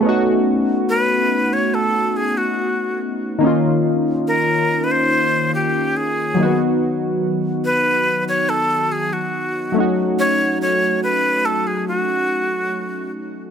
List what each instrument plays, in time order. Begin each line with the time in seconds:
0.01 synth keys A3 B3
0.05 synth keys C#4 D#4
0.09 synth keys F#4
0.89 flute B4
1.53 flute C#5
1.74 flute A4
2.17 flute G#4
2.37 flute F#4
3.38 synth keys D#3 A#3
3.42 synth keys C#4 D#4
3.47 synth keys F4
4.28 flute A#4
4.84 flute B4
4.91 flute C5
5.55 flute G4
5.97 flute G#4
6.34 synth keys D#3 F#3
6.38 synth keys A#3 D#4
6.42 synth keys B3 F#4
7.65 flute B4
8.28 flute C#5
8.49 flute A4
8.92 flute G#4
9.13 flute F#4
9.72 synth keys F#3 A3
9.76 synth keys C#4 D#4
9.80 synth keys F#4
10.19 flute C#5
10.62 flute C#5
11.03 flute B4
11.45 flute A4
11.67 flute G#4
11.88 flute F#4